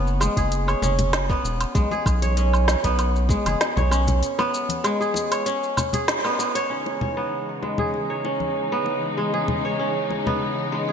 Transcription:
Already playing: F#1 G#3 B3 C#4 G#4 C#5
0.07 shaker
0.20 G#3, high bongo, high conga, low woodblock, shaker
0.37 F#1 G#4, kick, closed hi-hat, shaker
0.52 closed hi-hat, shaker
0.68 C#5, low woodblock, shaker
0.82 F#1 C#4, low conga, shaker
0.99 closed hi-hat, low conga, shaker
1.13 snare, closed hi-hat, low woodblock, shaker
1.30 B3, kick, shaker
1.44 E1, shaker
1.61 closed hi-hat, low woodblock, shaker
1.75 B1 G#3, kick, closed hi-hat, shaker
1.91 G#4, high bongo, high conga, shaker
2.06 B1, kick, low woodblock, shaker
2.22 C#5, closed hi-hat, high conga, shaker
2.37 C#4, closed hi-hat, shaker
2.53 low woodblock, shaker
2.68 snare, high bongo, high conga, shaker
2.84 B1 B3, kick, closed hi-hat, shaker
2.99 closed hi-hat, high bongo, low woodblock, shaker
3.16 shaker
3.29 G#3, kick, high bongo, shaker
3.46 F#1 G#4, closed hi-hat, high conga, low woodblock, shaker
3.61 snare, closed hi-hat, shaker
3.76 B1 C#5, low conga, shaker
3.91 C#4, high bongo, low woodblock, shaker
4.08 closed hi-hat, low conga, shaker
4.23 closed hi-hat, shaker
4.39 B3, high bongo, high conga, low woodblock, shaker
4.54 shaker
4.69 closed hi-hat, high conga, shaker
4.84 G#3, closed hi-hat, low woodblock, shaker
5.01 G#4, shaker
5.14 high bongo, high conga, shaker
5.31 C#5, closed hi-hat, low woodblock, shaker
5.46 C#4, closed hi-hat, shaker
5.63 shaker
5.77 low conga, low woodblock, shaker
5.93 G#4, closed hi-hat, low conga, shaker
6.08 snare, closed hi-hat, shaker
6.24 B3, low woodblock, shaker
6.39 B3, shaker
6.55 C#5, closed hi-hat, shaker
6.70 C#3 E3 G#3 C#4 D#4, closed hi-hat, shaker
6.86 high bongo, shaker
7.01 low conga, shaker
7.17 B3, closed hi-hat, shaker
7.32 closed hi-hat, shaker
7.49 shaker
7.62 G#3, high bongo, high conga, shaker
7.78 G#4, low conga
7.94 closed hi-hat, high bongo, shaker
8.10 C#5, shaker
8.25 C#4, high bongo, shaker
8.40 closed hi-hat, high conga, shaker
8.56 closed hi-hat, shaker
8.72 B3
8.86 high bongo, shaker
9.03 closed hi-hat, shaker
9.17 G#3, closed hi-hat
9.34 G#4, high bongo
9.48 low conga, shaker
9.65 C#5, closed hi-hat
9.79 C#4, closed hi-hat
9.97 shaker
10.10 high bongo, high conga, shaker
10.27 B3, low conga
10.41 closed hi-hat, shaker
10.57 closed hi-hat
10.72 G#3, shaker
10.88 G#4, closed hi-hat, shaker

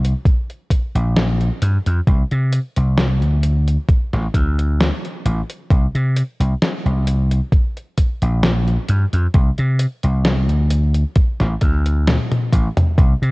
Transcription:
Already playing: C2
0.05 closed hi-hat
0.25 kick, closed hi-hat
0.50 closed hi-hat
0.71 kick, closed hi-hat
0.95 A#1, closed hi-hat
1.16 snare, closed hi-hat
1.41 closed hi-hat
1.62 G2, closed hi-hat
1.86 F2, closed hi-hat
2.07 C2, kick, closed hi-hat
2.31 C3, closed hi-hat
2.53 closed hi-hat
2.76 C2, closed hi-hat
2.98 snare, closed hi-hat
3.22 D2, closed hi-hat
3.43 closed hi-hat
3.68 closed hi-hat
3.89 kick, closed hi-hat
4.13 A1, snare, closed hi-hat
4.34 D2, kick, closed hi-hat
4.59 closed hi-hat
4.80 snare, closed hi-hat
5.05 closed hi-hat
5.25 A1, closed hi-hat
5.50 closed hi-hat
5.70 C2, kick, closed hi-hat
5.95 C3, closed hi-hat
6.16 closed hi-hat
6.40 C2, closed hi-hat
6.62 snare, closed hi-hat
6.86 C2, closed hi-hat
7.07 closed hi-hat
7.32 closed hi-hat
7.52 kick, closed hi-hat
7.77 closed hi-hat
7.98 kick, closed hi-hat
8.22 A#1, closed hi-hat
8.43 snare, closed hi-hat
8.68 closed hi-hat
8.88 G2, closed hi-hat
9.13 F2, closed hi-hat
9.34 C2, kick, closed hi-hat
9.58 C3, closed hi-hat
9.80 closed hi-hat
10.04 C2, closed hi-hat
10.25 snare, closed hi-hat
10.49 D2, closed hi-hat
10.71 closed hi-hat
10.95 closed hi-hat
11.16 kick, closed hi-hat
11.40 A1, snare, closed hi-hat
11.61 D2, kick, closed hi-hat
11.86 closed hi-hat
12.07 snare, closed hi-hat, high tom
12.32 closed hi-hat, high tom
12.53 A1, kick, closed hi-hat
12.77 closed hi-hat, mid tom
12.98 C2, kick, closed hi-hat
13.22 C3, closed hi-hat

